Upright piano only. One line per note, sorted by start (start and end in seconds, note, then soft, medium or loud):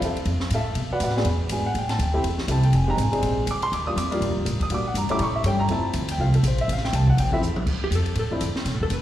0.00 0.24 C4 medium
0.00 0.24 E4 medium
0.04 0.27 A4 medium
0.04 0.27 E5 medium
0.04 0.27 F5 medium
0.04 0.26 A5 medium
0.54 0.90 A4 medium
0.54 0.90 E5 medium
0.54 0.76 F5 medium
0.54 0.90 A5 medium
0.93 1.01 F#4 medium
0.93 1.01 B4 medium
0.93 1.01 D5 medium
0.93 1.01 F#5 medium
1.03 1.16 F#4 medium
1.03 1.26 B4 medium
1.03 1.25 D5 medium
1.03 1.25 F#5 medium
1.16 1.25 B3 medium
1.16 1.25 D4 medium
1.16 1.25 F#4 medium
1.16 1.25 G#4 medium
1.51 1.64 B3 medium
1.51 1.64 D4 medium
1.51 1.64 F#4 medium
1.51 1.64 G#4 medium
1.51 1.65 G#5 medium
1.66 1.75 F#5 medium
1.78 1.91 G5 medium
1.89 1.99 A5 loud
2.02 2.24 G5 medium
2.13 2.23 A3 medium
2.13 2.23 C4 medium
2.13 2.23 E4 medium
2.13 2.23 G4 loud
2.48 2.62 A3 medium
2.48 2.61 C4 medium
2.48 2.62 E4 medium
2.48 2.62 G4 medium
2.48 2.64 A5 loud
2.65 2.74 G5 medium
2.75 2.88 G#5 medium
2.87 2.97 G#3 medium
2.87 2.97 C4 medium
2.87 2.97 D#4 medium
2.87 2.97 G4 medium
2.87 2.99 A#5 loud
3.02 3.23 G#5 medium
3.12 3.45 G#3 medium
3.12 3.45 C4 medium
3.12 3.46 D4 medium
3.12 3.46 G#4 medium
3.51 3.63 D6 loud
3.63 3.72 C6 loud
3.74 3.87 D6 medium
3.87 3.96 G3 medium
3.87 3.96 A#3 medium
3.87 3.96 D4 medium
3.87 3.96 F4 medium
3.87 3.97 D#6 loud
3.98 4.20 D6 medium
4.11 4.44 G3 medium
4.11 4.44 A#3 medium
4.11 4.44 D4 medium
4.11 4.45 F4 medium
4.63 4.71 D#6 loud
4.70 4.83 G3 medium
4.70 4.84 A#3 medium
4.70 4.84 D4 medium
4.70 4.84 F#4 medium
4.74 4.87 D6 medium
4.88 4.96 F#5 medium
4.97 5.11 A#5 medium
5.10 5.19 G3 medium
5.10 5.19 A3 medium
5.10 5.19 C#4 medium
5.10 5.20 E4 medium
5.10 5.20 D6 loud
5.22 5.35 C#6 medium
5.36 5.45 E5 medium
5.45 5.58 G3 medium
5.45 5.58 A3 medium
5.45 5.59 C#4 medium
5.45 5.59 G4 medium
5.45 5.60 G5 loud
5.60 5.69 A#5 loud
5.70 6.06 F3 medium
5.70 6.06 A3 medium
5.70 6.06 C4 medium
5.70 6.07 E4 medium
5.70 6.07 A5 medium
6.11 6.20 G5 medium
6.19 6.32 F3 medium
6.19 6.32 A3 medium
6.19 6.32 C4 medium
6.19 6.33 F4 medium
6.19 6.34 F5 medium
6.35 6.44 A4 medium
6.48 6.60 C5 medium
6.61 6.69 E5 loud
6.72 6.85 F5 medium
6.85 6.93 G5 medium
6.95 7.08 A5 loud
7.10 7.18 F#5 medium
7.20 7.33 G5 loud
7.32 7.41 F3 medium
7.32 7.41 A3 medium
7.32 7.42 C4 medium
7.32 7.41 E4 medium
7.32 7.39 E5 loud
8.31 8.40 F3 medium
8.31 8.40 A3 medium
8.31 8.40 C4 medium
8.31 8.40 D4 medium
8.31 8.41 E4 medium